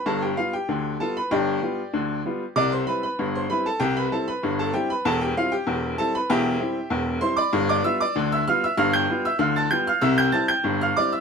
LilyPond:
<<
  \new Staff \with { instrumentName = "Upright piano" } { \time 2/4 \key c \major \tempo 4 = 96 <a' a''>16 <g' g''>16 <f' f''>16 <g' g''>8. <a' a''>16 <b' b''>16 | <g' d'' g''>2 | <d'' d'''>16 <c'' c'''>16 <b' b''>16 <b' b''>8 <c'' c'''>16 <b' b''>16 <a' a''>16 | <g' g''>16 <b' b''>16 <a' a''>16 <b' b''>8 <a' a''>16 <g' g''>16 <b' b''>16 |
<a' a''>16 <g' g''>16 <f' f''>16 <g' g''>8. <a' a''>16 <b' b''>16 | <g' e'' g''>4. <c'' c'''>16 <d'' b'' d'''>16~ | <d'' b'' d'''>16 <d'' d'''>16 <e'' e'''>16 <d'' d'''>8 <e'' e'''>16 <f'' f'''>16 <e'' e'''>16 | <f'' f'''>16 <g'' g'''>8 <e'' e'''>16 <f'' f'''>16 <a'' a'''>16 <g'' g'''>16 <f'' f'''>16 |
<e'' e'''>16 <g'' g'''>16 <a'' a'''>16 <g'' g'''>8 <f'' f'''>16 <d'' d'''>16 <e'' e'''>16 | }
  \new Staff \with { instrumentName = "Upright piano" } { \clef bass \time 2/4 \key c \major <g,, g,>8 <g b>8 <d, d>8 <g b f'>8 | <g,, g,>8 <g b f'>8 <d, d>8 <g b f'>8 | <c, c>8 <g c' e'>8 <g,, g,>8 <g c' e'>8 | <c, c>8 <g c' e'>8 <g,, g,>8 <g c' e'>8 |
<e,, e,>8 <g c' e'>8 <e,, e,>8 <g c' e'>8 | <e,, e,>8 <g c' e'>8 <e,, e,>8 <g c' e'>8 | <g,, g,>8 <g b f'>8 <d, d>8 <g b f'>8 | <g,, g,>8 <g b f'>8 <d, d>8 <g b f'>8 |
<c, c>8 <g c' e'>8 <g,, g,>8 <g c' e'>8 | }
>>